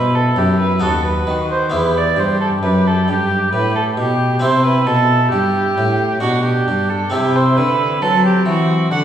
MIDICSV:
0, 0, Header, 1, 5, 480
1, 0, Start_track
1, 0, Key_signature, 1, "minor"
1, 0, Tempo, 898204
1, 922, Time_signature, 3, 2, 24, 8
1, 4833, End_track
2, 0, Start_track
2, 0, Title_t, "Violin"
2, 0, Program_c, 0, 40
2, 0, Note_on_c, 0, 71, 78
2, 81, Note_on_c, 0, 69, 66
2, 89, Note_off_c, 0, 71, 0
2, 202, Note_on_c, 0, 67, 68
2, 210, Note_off_c, 0, 69, 0
2, 320, Note_off_c, 0, 67, 0
2, 323, Note_on_c, 0, 71, 69
2, 439, Note_off_c, 0, 71, 0
2, 442, Note_on_c, 0, 69, 75
2, 559, Note_off_c, 0, 69, 0
2, 563, Note_on_c, 0, 71, 72
2, 798, Note_off_c, 0, 71, 0
2, 810, Note_on_c, 0, 72, 69
2, 920, Note_off_c, 0, 72, 0
2, 923, Note_on_c, 0, 71, 74
2, 1055, Note_on_c, 0, 74, 69
2, 1063, Note_off_c, 0, 71, 0
2, 1170, Note_on_c, 0, 72, 66
2, 1178, Note_off_c, 0, 74, 0
2, 1285, Note_off_c, 0, 72, 0
2, 1288, Note_on_c, 0, 69, 65
2, 1331, Note_off_c, 0, 69, 0
2, 1406, Note_on_c, 0, 71, 75
2, 1536, Note_on_c, 0, 69, 65
2, 1544, Note_off_c, 0, 71, 0
2, 1655, Note_on_c, 0, 67, 70
2, 1663, Note_off_c, 0, 69, 0
2, 1882, Note_off_c, 0, 67, 0
2, 1886, Note_on_c, 0, 71, 75
2, 2001, Note_off_c, 0, 71, 0
2, 2007, Note_on_c, 0, 69, 68
2, 2049, Note_off_c, 0, 69, 0
2, 2119, Note_on_c, 0, 67, 70
2, 2356, Note_off_c, 0, 67, 0
2, 2362, Note_on_c, 0, 72, 77
2, 2480, Note_off_c, 0, 72, 0
2, 2488, Note_on_c, 0, 71, 70
2, 2601, Note_on_c, 0, 69, 79
2, 2609, Note_off_c, 0, 71, 0
2, 2832, Note_off_c, 0, 69, 0
2, 2835, Note_on_c, 0, 67, 82
2, 3310, Note_off_c, 0, 67, 0
2, 3319, Note_on_c, 0, 66, 76
2, 3437, Note_off_c, 0, 66, 0
2, 3440, Note_on_c, 0, 67, 73
2, 3684, Note_on_c, 0, 69, 70
2, 3692, Note_off_c, 0, 67, 0
2, 3805, Note_on_c, 0, 67, 80
2, 3813, Note_off_c, 0, 69, 0
2, 3932, Note_on_c, 0, 72, 70
2, 3940, Note_off_c, 0, 67, 0
2, 4045, Note_on_c, 0, 71, 82
2, 4053, Note_off_c, 0, 72, 0
2, 4286, Note_on_c, 0, 69, 87
2, 4294, Note_off_c, 0, 71, 0
2, 4403, Note_off_c, 0, 69, 0
2, 4414, Note_on_c, 0, 67, 67
2, 4523, Note_off_c, 0, 67, 0
2, 4526, Note_on_c, 0, 66, 72
2, 4757, Note_off_c, 0, 66, 0
2, 4767, Note_on_c, 0, 78, 93
2, 4810, Note_off_c, 0, 78, 0
2, 4833, End_track
3, 0, Start_track
3, 0, Title_t, "Oboe"
3, 0, Program_c, 1, 68
3, 0, Note_on_c, 1, 64, 66
3, 442, Note_on_c, 1, 66, 64
3, 450, Note_off_c, 1, 64, 0
3, 925, Note_on_c, 1, 67, 65
3, 933, Note_off_c, 1, 66, 0
3, 2355, Note_off_c, 1, 67, 0
3, 2359, Note_on_c, 1, 64, 66
3, 3156, Note_off_c, 1, 64, 0
3, 3320, Note_on_c, 1, 62, 61
3, 3781, Note_off_c, 1, 62, 0
3, 3807, Note_on_c, 1, 64, 69
3, 4274, Note_off_c, 1, 64, 0
3, 4286, Note_on_c, 1, 60, 71
3, 4759, Note_on_c, 1, 62, 69
3, 4767, Note_off_c, 1, 60, 0
3, 4833, Note_off_c, 1, 62, 0
3, 4833, End_track
4, 0, Start_track
4, 0, Title_t, "Harpsichord"
4, 0, Program_c, 2, 6
4, 0, Note_on_c, 2, 47, 44
4, 0, Note_on_c, 2, 59, 37
4, 0, Note_on_c, 2, 64, 41
4, 165, Note_off_c, 2, 59, 0
4, 176, Note_off_c, 2, 47, 0
4, 194, Note_on_c, 2, 42, 45
4, 412, Note_off_c, 2, 64, 0
4, 416, Note_off_c, 2, 42, 0
4, 425, Note_on_c, 2, 59, 40
4, 430, Note_on_c, 2, 66, 41
4, 439, Note_on_c, 2, 39, 43
4, 660, Note_off_c, 2, 39, 0
4, 680, Note_on_c, 2, 51, 40
4, 900, Note_off_c, 2, 51, 0
4, 900, Note_off_c, 2, 59, 0
4, 903, Note_off_c, 2, 66, 0
4, 907, Note_on_c, 2, 59, 41
4, 915, Note_on_c, 2, 64, 38
4, 925, Note_on_c, 2, 40, 43
4, 1142, Note_off_c, 2, 40, 0
4, 1157, Note_on_c, 2, 43, 47
4, 1378, Note_off_c, 2, 43, 0
4, 1380, Note_off_c, 2, 59, 0
4, 1405, Note_on_c, 2, 42, 45
4, 1623, Note_off_c, 2, 42, 0
4, 1646, Note_on_c, 2, 43, 44
4, 1863, Note_off_c, 2, 43, 0
4, 1886, Note_on_c, 2, 45, 46
4, 2102, Note_off_c, 2, 45, 0
4, 2124, Note_on_c, 2, 47, 44
4, 2337, Note_off_c, 2, 64, 0
4, 2342, Note_off_c, 2, 47, 0
4, 2349, Note_on_c, 2, 60, 42
4, 2357, Note_on_c, 2, 64, 41
4, 2366, Note_on_c, 2, 48, 45
4, 2584, Note_off_c, 2, 48, 0
4, 2603, Note_on_c, 2, 47, 45
4, 2821, Note_off_c, 2, 47, 0
4, 2844, Note_on_c, 2, 43, 49
4, 3061, Note_off_c, 2, 43, 0
4, 3088, Note_on_c, 2, 45, 48
4, 3295, Note_off_c, 2, 60, 0
4, 3299, Note_off_c, 2, 64, 0
4, 3305, Note_off_c, 2, 45, 0
4, 3315, Note_on_c, 2, 62, 42
4, 3331, Note_on_c, 2, 47, 48
4, 3547, Note_off_c, 2, 47, 0
4, 3570, Note_on_c, 2, 43, 46
4, 3786, Note_off_c, 2, 43, 0
4, 3786, Note_off_c, 2, 62, 0
4, 3793, Note_on_c, 2, 60, 44
4, 3802, Note_on_c, 2, 64, 42
4, 3811, Note_on_c, 2, 48, 49
4, 4026, Note_off_c, 2, 48, 0
4, 4049, Note_on_c, 2, 50, 47
4, 4264, Note_off_c, 2, 50, 0
4, 4287, Note_on_c, 2, 54, 48
4, 4501, Note_off_c, 2, 54, 0
4, 4520, Note_on_c, 2, 52, 50
4, 4737, Note_off_c, 2, 52, 0
4, 4765, Note_on_c, 2, 50, 50
4, 4833, Note_off_c, 2, 50, 0
4, 4833, Note_off_c, 2, 60, 0
4, 4833, Note_off_c, 2, 64, 0
4, 4833, End_track
5, 0, Start_track
5, 0, Title_t, "Cello"
5, 0, Program_c, 3, 42
5, 0, Note_on_c, 3, 47, 56
5, 193, Note_off_c, 3, 47, 0
5, 201, Note_on_c, 3, 42, 55
5, 436, Note_off_c, 3, 42, 0
5, 441, Note_on_c, 3, 39, 58
5, 677, Note_off_c, 3, 39, 0
5, 685, Note_on_c, 3, 51, 54
5, 925, Note_on_c, 3, 40, 59
5, 933, Note_off_c, 3, 51, 0
5, 1161, Note_off_c, 3, 40, 0
5, 1164, Note_on_c, 3, 43, 59
5, 1398, Note_off_c, 3, 43, 0
5, 1405, Note_on_c, 3, 42, 53
5, 1647, Note_on_c, 3, 43, 55
5, 1655, Note_off_c, 3, 42, 0
5, 1882, Note_off_c, 3, 43, 0
5, 1885, Note_on_c, 3, 45, 57
5, 2125, Note_on_c, 3, 47, 55
5, 2133, Note_off_c, 3, 45, 0
5, 2364, Note_on_c, 3, 48, 60
5, 2372, Note_off_c, 3, 47, 0
5, 2601, Note_off_c, 3, 48, 0
5, 2604, Note_on_c, 3, 47, 56
5, 2838, Note_off_c, 3, 47, 0
5, 2847, Note_on_c, 3, 43, 58
5, 3079, Note_off_c, 3, 43, 0
5, 3088, Note_on_c, 3, 45, 59
5, 3321, Note_off_c, 3, 45, 0
5, 3327, Note_on_c, 3, 47, 59
5, 3561, Note_off_c, 3, 47, 0
5, 3569, Note_on_c, 3, 43, 56
5, 3802, Note_off_c, 3, 43, 0
5, 3808, Note_on_c, 3, 48, 62
5, 4048, Note_on_c, 3, 50, 60
5, 4056, Note_off_c, 3, 48, 0
5, 4284, Note_off_c, 3, 50, 0
5, 4288, Note_on_c, 3, 54, 59
5, 4519, Note_off_c, 3, 54, 0
5, 4526, Note_on_c, 3, 52, 58
5, 4757, Note_off_c, 3, 52, 0
5, 4762, Note_on_c, 3, 50, 61
5, 4833, Note_off_c, 3, 50, 0
5, 4833, End_track
0, 0, End_of_file